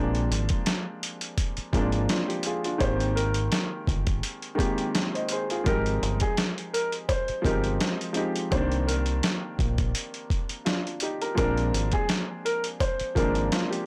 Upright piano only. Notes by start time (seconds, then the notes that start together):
2.81 C5
3.15 A#4
5.66 A#4
6.21 G#4
6.73 A#4
7.09 C5
7.45 A#4
8.52 C5
8.87 A#4
11.37 A#4
11.93 G#4
12.45 A#4
12.80 C5
13.16 A#4